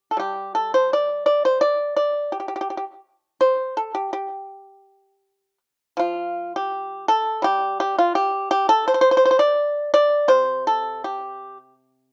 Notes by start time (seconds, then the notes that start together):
0.11 A4
0.17 G3 G4
0.55 A4
0.74 C5
0.93 D5
1.26 D5
1.45 C5
1.61 D5
1.97 D5
2.32 G4
2.40 G4
2.48 G4
2.56 G4
2.61 G4
2.70 G4
2.77 G4
3.41 C5
3.77 A4
3.95 G4
4.13 G4
5.97 F3 F4
6.56 G4
7.08 A4
7.42 G3 G4
7.80 G4
7.99 F4
8.15 G4
8.51 G4
8.69 A4
8.88 C5
8.94 C5
9.01 C5
9.11 C5
9.17 C5
9.26 C5
9.31 C5
9.39 D5
9.94 D5
10.28 C3 C5
10.67 A4
11.04 G4